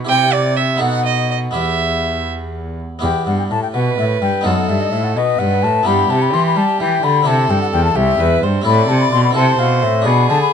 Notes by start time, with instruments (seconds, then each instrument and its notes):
0.05 harpsichord E4 G4
0.09 cello C3, harpsichord C3, violin G5, flute G5
0.33 violin D5, flute D5
0.57 violin E5, flute E5
0.76 harpsichord B3 D#4 A4
0.81 cello B2, harpsichord B2, violin F#5, flute F#5
1.06 flute D#5, violin D#5
1.30 flute D#5, violin D#5
1.51 harpsichord B3 E4 G4, violin E5
1.55 harpsichord E2, cello E2, flute E5
2.99 harpsichord B3 E4 G4
3.03 cello E2, harpsichord E2, flute G5
3.26 cello G2, harpsichord G2, flute F#5
3.39 flute G5
3.51 harpsichord A2, cello A2, flute A5
3.63 flute G5
3.74 harpsichord B2, cello B2, violin B4, flute F#5
3.98 harpsichord A2, cello A2, flute E5
4.22 cello G2, harpsichord G2, flute G5
4.41 harpsichord B3 D#4 A4, flute F#5
4.46 cello F#2, harpsichord F#2, violin A4
4.69 cello G2, harpsichord G2, flute E5
4.81 flute D#5
4.92 cello A2, harpsichord A2, flute E5
5.04 flute F#5
5.16 cello B2, harpsichord B2, violin B4, flute D#5
5.39 cello G2, harpsichord G2, flute F#5
5.63 cello A2, harpsichord A2, flute A5
5.83 cello G2, harpsichord B3 E4 G4, flute B5
5.87 harpsichord G2, violin G4
6.10 harpsichord C3, cello C3, flute A5
6.22 flute B5
6.33 cello E3, harpsichord E3, flute C6
6.46 flute B5
6.56 harpsichord G3, cello G3, flute A5
6.80 cello E3, harpsichord E3, flute G5
7.03 cello D3, harpsichord D3, flute B5
7.22 cello C3, harpsichord C4 E4 G4
7.27 harpsichord C3, violin A4, flute A5
7.50 cello G2, harpsichord G2, flute G5
7.62 flute F#5
7.73 cello E2, harpsichord E2, flute G5
7.85 flute A5
7.96 cello C2, harpsichord C2, violin G4, flute E5
8.20 cello E2, harpsichord E2, violin B4
8.43 harpsichord G2, cello G2, violin C5
8.62 harpsichord C4 E4 A4
8.66 harpsichord A2, cello A2, violin D5, flute B5
8.89 harpsichord C3, cello C3, flute A5
9.00 flute B5
9.12 harpsichord B2, cello B2, flute C6
9.24 flute B5
9.31 harpsichord C4 E4 A4
9.35 harpsichord C3, cello C3, violin C5, flute A5
9.59 harpsichord B2, cello B2, flute F5
9.82 harpsichord A2, cello A2, flute E5
10.02 harpsichord D4 G#4
10.06 cello B2, harpsichord B2, violin G#4, flute B5
10.30 harpsichord D3, cello D3, flute A5
10.42 flute B5